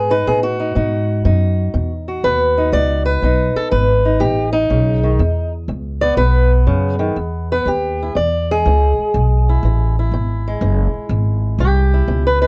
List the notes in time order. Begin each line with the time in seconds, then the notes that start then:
Already playing: G#2 B2 G#4
0.10 D#4 B4
0.27 A2 B2 G#4
0.43 F#4
0.60 D#4
0.75 G#2 B2 D#4
1.25 F#2 B2 D#4
1.74 E2 B2
2.08 F#4
2.24 D#2 B2 B4
2.58 D#4
2.72 C#2 B2 D5
3.06 B4
3.22 B1 B2 D#4
3.56 A4, muted upright bass stroke
3.71 G#1 B2 B4
4.05 D#4
4.20 A1 B2 G4
4.53 D#4
4.70 B1 C#3
5.03 D#3
5.19 E2
5.68 C#2 E2
6.01 B3 D5
6.17 B1 B2 B4
6.67 F#2 C#3
6.99 D#3
7.16 E2
7.52 B3 B4
7.66 D#2 E3 G4
8.03 E4
8.15 E2 B2 D5
8.51 G#3 G#4
8.66 C#2 E3
8.99 muted upright bass stroke
9.14 B1 E2
9.49 E4
9.63 A1 E3
9.99 E4
10.12 G#1 B2
10.48 G#3
10.61 F#1 E3
10.94 muted upright bass stroke
11.09 G#1 E2
11.59 C2 E3 G4
11.94 E4
12.08 C#2 B2
12.27 B4
12.41 G#3 B4